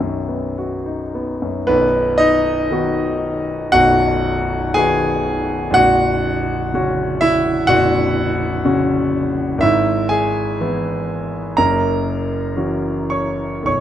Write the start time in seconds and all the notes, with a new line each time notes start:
Already playing: B1 D#3 B3 D#4 F#4 D#5
0.00 F#2
0.28 B3
0.58 F#4
0.86 D#4
1.15 B3
1.42 F#2
1.67 B0 B1 B3 B4
2.18 D#4 D#5
2.71 D#3 B3 F#4
3.72 B0 B1 F#4 F#5
4.74 D#3 B3 F#4 G#4 G#5
5.70 A#0 A#1 F#5
5.75 F#4
6.74 C#3 C#4 F#4
7.21 E4 E5
7.67 A#0 A#1 F#4 F#5
8.65 C#3 C#4 F#4
9.58 G#1 E5
9.62 G#2 E4
10.09 G#4 G#5
10.61 E3 B3 E4
11.57 F#1 F#2 A#4 A#5
12.57 E3 C#4 F#4
13.10 C#5 C#6
13.63 B1 C#6
13.67 B0 C#5